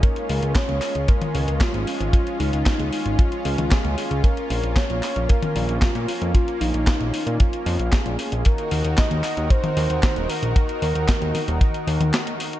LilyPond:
<<
  \new Staff \with { instrumentName = "Soft synth lead" } { \time 4/4 \key bes \minor \tempo 4 = 114 bes'4 des''4 bes'4 f'4 | f'8 ees'4. f'4 aes'4 | bes'4 des''4 bes'4 f'4 | f'8 ees'4. f'4 aes'4 |
bes'4 ees''4 c''4. bes'8~ | bes'2. r4 | }
  \new Staff \with { instrumentName = "Analog synth pad" } { \time 4/4 \key bes \minor << { <des' f'>1~ | <des' f'>1~ | <des' f'>1~ | <des' f'>1 |
<ees ges' bes'>1~ | <ees ges' bes'>1 | } \\ { aes1~ | aes1 | bes1~ | bes1 |
ees'1~ | ees'1 | } >> }
  \new Staff \with { instrumentName = "Analog synth bass" } { \clef bass \time 4/4 \key bes \minor r8 des,16 des,16 r16 des,16 r16 des,16 r8 des,16 des,16 r16 aes,,16 r16 aes,,16 | r8 des,16 des,16 r16 des,16 r16 aes,,16 r8 des,16 des,16 r16 des,16 r16 des,16 | r8 bes,,16 bes,,16 r16 bes,,16 r16 bes,,16 r8 bes,,16 bes,,16 r16 bes,16 r16 f,16 | r8 bes,,16 bes,,16 r16 bes,,16 r16 bes,16 r8 f,16 bes,,16 r16 bes,,16 r16 bes,,16 |
r8 ees,16 ees,16 r16 ees,16 r16 ees,16 r8 ees,16 ees,16 r16 ees,,16 r16 bes,,16 | r8 ees,16 ees,16 r16 ees,16 r16 ees,,16 r8 ees,16 ees,16 r4 | }
  \new DrumStaff \with { instrumentName = "Drums" } \drummode { \time 4/4 <hh bd>16 hh16 hho16 hh16 <hc hh bd sn>16 hh16 <hc hho>16 hh16 <hh bd>16 <hh tommh>16 hho16 hh16 <hc hh bd sn>16 hh16 hho16 hh16 | <hh bd>16 hh16 hho16 hh16 <hc hh bd sn>16 hh16 hho16 hh16 <hh bd>16 hh16 hho16 <hh tommh>16 <hc hh bd sn>16 hh16 hho16 hh16 | <hh bd>16 hh16 hho16 hh16 <hc hh bd sn>16 hh16 <hc hho>16 hh16 <hh bd>16 <hh tommh>16 hho16 hh16 <hc hh bd sn>16 hh16 hho16 hh16 | <hh bd>16 hh16 hho16 hh16 <hc hh bd sn>16 hh16 hho16 hh16 <hh bd>16 hh16 hho16 hh16 <hc hh bd sn>16 hh16 hho16 hh16 |
<hh bd>16 hh16 hho16 hh16 <hc hh bd sn>16 hh16 <hc hho>16 hh16 <hh bd>16 <hh tommh>16 hho16 hh16 <hc hh bd sn>16 hh16 hho16 hh16 | <hh bd>16 hh16 hho16 hh16 <hc hh bd sn>16 hh16 <hho tommh>16 hh16 <hh bd>16 hh16 hho16 <hh tommh>16 <hc hh sn>16 hh16 hho16 hh16 | }
>>